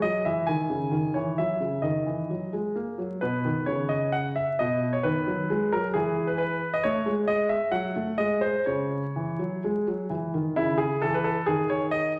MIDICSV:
0, 0, Header, 1, 2, 480
1, 0, Start_track
1, 0, Key_signature, 5, "major"
1, 0, Tempo, 456969
1, 1463, Time_signature, 4, 2, 24, 8
1, 4842, Tempo, 448096
1, 7236, Key_signature, 4, "minor"
1, 8682, Tempo, 477707
1, 11082, Tempo, 453515
1, 12788, End_track
2, 0, Start_track
2, 0, Title_t, "Grand piano"
2, 0, Program_c, 0, 0
2, 22, Note_on_c, 0, 75, 73
2, 32, Note_on_c, 0, 54, 44
2, 257, Note_off_c, 0, 54, 0
2, 263, Note_on_c, 0, 76, 63
2, 264, Note_off_c, 0, 75, 0
2, 270, Note_on_c, 0, 52, 43
2, 477, Note_off_c, 0, 76, 0
2, 490, Note_on_c, 0, 80, 67
2, 493, Note_off_c, 0, 52, 0
2, 504, Note_on_c, 0, 51, 45
2, 728, Note_off_c, 0, 51, 0
2, 733, Note_on_c, 0, 49, 41
2, 960, Note_on_c, 0, 51, 42
2, 963, Note_off_c, 0, 49, 0
2, 1198, Note_off_c, 0, 51, 0
2, 1198, Note_on_c, 0, 73, 53
2, 1212, Note_off_c, 0, 80, 0
2, 1214, Note_on_c, 0, 52, 39
2, 1426, Note_off_c, 0, 73, 0
2, 1447, Note_off_c, 0, 52, 0
2, 1450, Note_on_c, 0, 76, 58
2, 1459, Note_on_c, 0, 54, 37
2, 1684, Note_on_c, 0, 49, 35
2, 1692, Note_off_c, 0, 54, 0
2, 1911, Note_on_c, 0, 75, 46
2, 1921, Note_on_c, 0, 51, 39
2, 1925, Note_off_c, 0, 49, 0
2, 1943, Note_off_c, 0, 76, 0
2, 2165, Note_off_c, 0, 51, 0
2, 2168, Note_on_c, 0, 52, 34
2, 2409, Note_off_c, 0, 52, 0
2, 2419, Note_on_c, 0, 54, 37
2, 2648, Note_off_c, 0, 75, 0
2, 2655, Note_off_c, 0, 54, 0
2, 2659, Note_on_c, 0, 56, 35
2, 2895, Note_on_c, 0, 58, 37
2, 2896, Note_off_c, 0, 56, 0
2, 3133, Note_on_c, 0, 54, 36
2, 3134, Note_off_c, 0, 58, 0
2, 3373, Note_on_c, 0, 71, 64
2, 3376, Note_off_c, 0, 54, 0
2, 3389, Note_on_c, 0, 47, 44
2, 3621, Note_on_c, 0, 51, 41
2, 3624, Note_off_c, 0, 47, 0
2, 3827, Note_off_c, 0, 71, 0
2, 3846, Note_on_c, 0, 73, 68
2, 3855, Note_on_c, 0, 49, 44
2, 3859, Note_off_c, 0, 51, 0
2, 4084, Note_on_c, 0, 75, 64
2, 4103, Note_off_c, 0, 73, 0
2, 4332, Note_on_c, 0, 78, 76
2, 4343, Note_off_c, 0, 75, 0
2, 4485, Note_off_c, 0, 78, 0
2, 4555, Note_off_c, 0, 49, 0
2, 4575, Note_on_c, 0, 76, 65
2, 4822, Note_on_c, 0, 75, 70
2, 4828, Note_off_c, 0, 76, 0
2, 4836, Note_on_c, 0, 47, 48
2, 5182, Note_on_c, 0, 73, 66
2, 5185, Note_off_c, 0, 47, 0
2, 5194, Note_off_c, 0, 75, 0
2, 5296, Note_on_c, 0, 71, 70
2, 5304, Note_on_c, 0, 51, 47
2, 5313, Note_off_c, 0, 73, 0
2, 5543, Note_off_c, 0, 51, 0
2, 5551, Note_on_c, 0, 54, 47
2, 5787, Note_off_c, 0, 54, 0
2, 5797, Note_on_c, 0, 56, 52
2, 6029, Note_off_c, 0, 56, 0
2, 6032, Note_off_c, 0, 71, 0
2, 6037, Note_on_c, 0, 70, 70
2, 6046, Note_on_c, 0, 54, 47
2, 6183, Note_off_c, 0, 70, 0
2, 6263, Note_on_c, 0, 68, 73
2, 6273, Note_off_c, 0, 54, 0
2, 6276, Note_on_c, 0, 52, 54
2, 6624, Note_on_c, 0, 71, 64
2, 6633, Note_off_c, 0, 68, 0
2, 6723, Note_off_c, 0, 71, 0
2, 6739, Note_on_c, 0, 71, 74
2, 6965, Note_off_c, 0, 52, 0
2, 7107, Note_off_c, 0, 71, 0
2, 7119, Note_on_c, 0, 75, 75
2, 7225, Note_on_c, 0, 73, 76
2, 7237, Note_off_c, 0, 75, 0
2, 7240, Note_on_c, 0, 57, 53
2, 7463, Note_off_c, 0, 57, 0
2, 7467, Note_on_c, 0, 56, 51
2, 7513, Note_off_c, 0, 73, 0
2, 7697, Note_on_c, 0, 75, 81
2, 7919, Note_off_c, 0, 75, 0
2, 7930, Note_on_c, 0, 76, 70
2, 7986, Note_off_c, 0, 56, 0
2, 8156, Note_off_c, 0, 76, 0
2, 8169, Note_on_c, 0, 54, 51
2, 8169, Note_on_c, 0, 78, 79
2, 8411, Note_off_c, 0, 54, 0
2, 8432, Note_on_c, 0, 57, 44
2, 8626, Note_off_c, 0, 78, 0
2, 8664, Note_on_c, 0, 75, 73
2, 8667, Note_off_c, 0, 57, 0
2, 8675, Note_on_c, 0, 56, 46
2, 8900, Note_on_c, 0, 72, 67
2, 8908, Note_off_c, 0, 75, 0
2, 9021, Note_off_c, 0, 56, 0
2, 9125, Note_off_c, 0, 72, 0
2, 9150, Note_on_c, 0, 73, 61
2, 9158, Note_on_c, 0, 49, 43
2, 9508, Note_off_c, 0, 49, 0
2, 9652, Note_on_c, 0, 52, 44
2, 9876, Note_off_c, 0, 52, 0
2, 9886, Note_on_c, 0, 54, 41
2, 10113, Note_off_c, 0, 54, 0
2, 10139, Note_on_c, 0, 56, 46
2, 10164, Note_off_c, 0, 73, 0
2, 10360, Note_off_c, 0, 56, 0
2, 10372, Note_on_c, 0, 54, 41
2, 10595, Note_on_c, 0, 52, 43
2, 10596, Note_off_c, 0, 54, 0
2, 10827, Note_off_c, 0, 52, 0
2, 10838, Note_on_c, 0, 51, 43
2, 11062, Note_on_c, 0, 64, 79
2, 11065, Note_off_c, 0, 51, 0
2, 11070, Note_on_c, 0, 49, 53
2, 11286, Note_on_c, 0, 68, 78
2, 11287, Note_off_c, 0, 64, 0
2, 11420, Note_off_c, 0, 49, 0
2, 11518, Note_off_c, 0, 68, 0
2, 11541, Note_on_c, 0, 69, 82
2, 11559, Note_on_c, 0, 52, 54
2, 11671, Note_off_c, 0, 69, 0
2, 11675, Note_on_c, 0, 71, 72
2, 11781, Note_on_c, 0, 69, 74
2, 11798, Note_off_c, 0, 71, 0
2, 11904, Note_off_c, 0, 52, 0
2, 12004, Note_off_c, 0, 69, 0
2, 12014, Note_on_c, 0, 68, 83
2, 12027, Note_on_c, 0, 51, 52
2, 12242, Note_off_c, 0, 68, 0
2, 12261, Note_on_c, 0, 73, 74
2, 12411, Note_off_c, 0, 73, 0
2, 12490, Note_on_c, 0, 75, 81
2, 12714, Note_off_c, 0, 75, 0
2, 12721, Note_off_c, 0, 51, 0
2, 12788, End_track
0, 0, End_of_file